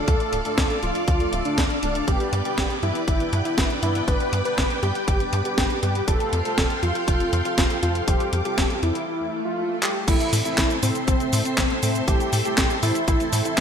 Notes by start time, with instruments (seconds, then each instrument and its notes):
Already playing: string machine A4 D5 F5 D6
0.08 analog synth bass D2, analog polysynth A3 D4 F4 A4, analog synth lead A4, kick, closed hi-hat
0.20 closed hi-hat
0.33 analog synth bass D1, closed hi-hat
0.45 analog polysynth A3 D4 F4 A4, analog synth lead A4, closed hi-hat
0.58 analog synth bass D2, kick, snare, closed hi-hat
0.70 closed hi-hat
0.83 analog synth bass D1, analog polysynth A3 D4 F4 A4, analog synth lead F4, closed hi-hat
0.95 closed hi-hat
1.08 analog synth bass D2, analog synth lead F4, kick, closed hi-hat
1.20 analog polysynth A3 D4 F4 A4, closed hi-hat
1.33 analog synth bass D1, closed hi-hat
1.45 analog polysynth A3 D4 F4 A4, analog synth lead D4, closed hi-hat
1.58 analog synth bass D2, kick, snare, closed hi-hat
1.70 closed hi-hat
1.83 analog synth bass D1, analog polysynth A3 D4 F4 A4, analog synth lead D4, closed hi-hat
1.95 closed hi-hat
2.08 analog synth bass G1, analog polysynth B3 D4 G4 B4, analog synth lead G4, string machine B4 G5, kick, closed hi-hat
2.20 closed hi-hat
2.33 analog synth bass G2, closed hi-hat
2.45 analog polysynth B3 D4 G4 B4, analog synth lead G4, closed hi-hat
2.58 analog synth bass G1, kick, snare, closed hi-hat
2.70 closed hi-hat
2.83 analog synth bass G2, analog polysynth B3 D4 G4 B4, analog synth lead E4, closed hi-hat
2.95 closed hi-hat
3.08 analog synth bass G1, analog synth lead E4, kick, closed hi-hat
3.20 analog polysynth B3 D4 G4 B4, closed hi-hat
3.33 analog synth bass G2, closed hi-hat
3.45 analog synth lead E4, closed hi-hat
3.58 analog synth bass G1, analog polysynth B3 D4 G4 B4, kick, snare, closed hi-hat
3.70 closed hi-hat
3.83 analog synth bass G2, analog polysynth B3 D4 G4 B4, analog synth lead E4, closed hi-hat
3.95 closed hi-hat
4.08 analog synth bass G1, analog polysynth B3 D4 G4 B4, analog synth lead B4, kick, closed hi-hat
4.20 closed hi-hat
4.33 analog synth bass G2, closed hi-hat
4.45 analog polysynth B3 D4 G4 B4, analog synth lead B4, closed hi-hat
4.58 analog synth bass G1, kick, snare, closed hi-hat
4.70 closed hi-hat
4.83 analog synth bass G2, analog polysynth B3 D4 G4 B4, analog synth lead G4, closed hi-hat
4.95 closed hi-hat
5.08 analog synth bass G1, analog synth lead G4, kick, closed hi-hat
5.20 analog polysynth B3 D4 G4 B4, closed hi-hat
5.33 analog synth bass G2, closed hi-hat
5.45 analog synth lead G4, closed hi-hat
5.58 analog synth bass G1, analog polysynth B3 D4 G4 B4, kick, snare, closed hi-hat
5.70 closed hi-hat
5.83 analog synth bass G2, analog polysynth B3 D4 G4 B4, analog synth lead G4, closed hi-hat
5.95 closed hi-hat
6.08 analog synth bass F1, analog polysynth C4 F4 G4 A4, analog synth lead A4, string machine A4 F5 G5 C6, kick, closed hi-hat
6.20 closed hi-hat
6.33 analog synth bass F2, closed hi-hat
6.45 analog polysynth C4 F4 G4 A4, analog synth lead A4, closed hi-hat
6.58 analog synth bass F1, kick, snare, closed hi-hat
6.70 closed hi-hat
6.83 analog synth bass F2, analog polysynth C4 F4 G4 A4, analog synth lead F4, closed hi-hat
6.95 closed hi-hat
7.08 analog synth bass F1, analog synth lead F4, kick, closed hi-hat
7.20 analog polysynth C4 F4 G4 A4, closed hi-hat
7.33 analog synth bass F2, closed hi-hat
7.45 analog synth lead F4, closed hi-hat
7.58 analog synth bass F1, analog polysynth C4 F4 A4, kick, snare, closed hi-hat
7.70 closed hi-hat
7.83 analog synth bass F2, analog polysynth C4 F4 G4 A4, analog synth lead F4, closed hi-hat
7.95 closed hi-hat
8.08 analog synth bass F1, analog polysynth C4 F4 G4 A4, analog synth lead G4, string machine D6, kick, closed hi-hat
8.20 closed hi-hat
8.33 analog synth bass F2, closed hi-hat
8.45 analog polysynth C4 F4 G4 A4, analog synth lead G4, closed hi-hat
8.58 analog synth bass F1, kick, snare, closed hi-hat
8.70 closed hi-hat
8.83 analog synth bass F2, analog polysynth C4 G4 A4, analog synth lead E4, closed hi-hat
8.95 closed hi-hat
9.08 analog synth lead E4, swell
9.45 analog synth lead F4
9.83 analog synth lead G4, clap
10.08 analog synth bass A1, analog polysynth A3 C4 E4 A4, analog synth lead E4, string machine A4 C5 E5 C6, kick, closed hi-hat, crash, cabasa
10.20 closed hi-hat, cabasa
10.33 analog synth bass A2, open hi-hat, cabasa
10.45 analog polysynth A3 C4 E4 A4, analog synth lead E4, closed hi-hat, cabasa
10.58 analog synth bass A1, kick, snare, clap, closed hi-hat, cabasa
10.70 closed hi-hat, cabasa
10.83 analog synth bass A2, analog polysynth A3 C4 E4 A4, analog synth lead C4, open hi-hat, cabasa
10.95 closed hi-hat, cabasa
11.08 analog synth bass A1, analog synth lead C4, kick, closed hi-hat, cabasa
11.20 analog polysynth A3 C4 E4 A4, closed hi-hat, cabasa
11.33 analog synth bass A2, open hi-hat, cabasa
11.45 analog synth lead C4, closed hi-hat, cabasa
11.58 analog synth bass A1, analog polysynth A3 C4 E4, kick, snare, clap, closed hi-hat, cabasa
11.70 closed hi-hat
11.83 analog synth bass A2, analog polysynth A3 C4 E4 A4, analog synth lead C4, open hi-hat, cabasa
11.95 closed hi-hat, cabasa
12.08 analog synth bass A1, analog polysynth A3 C4 E4 A4, analog synth lead G4, kick, closed hi-hat, cabasa
12.20 closed hi-hat, cabasa
12.33 analog synth bass A2, open hi-hat, cabasa
12.45 analog polysynth A3 C4 E4 A4, analog synth lead G4, closed hi-hat, cabasa
12.58 analog synth bass A1, kick, snare, clap, closed hi-hat, cabasa
12.70 closed hi-hat, cabasa
12.83 analog synth bass A2, analog polysynth A3 C4 E4 A4, analog synth lead E4, open hi-hat, cabasa
12.95 closed hi-hat, cabasa
13.08 analog synth bass A1, analog synth lead E4, kick, closed hi-hat, cabasa
13.20 analog polysynth A3 C4 E4 A4, closed hi-hat, cabasa
13.33 analog synth bass A2, open hi-hat, cabasa
13.45 analog synth lead E4, closed hi-hat, cabasa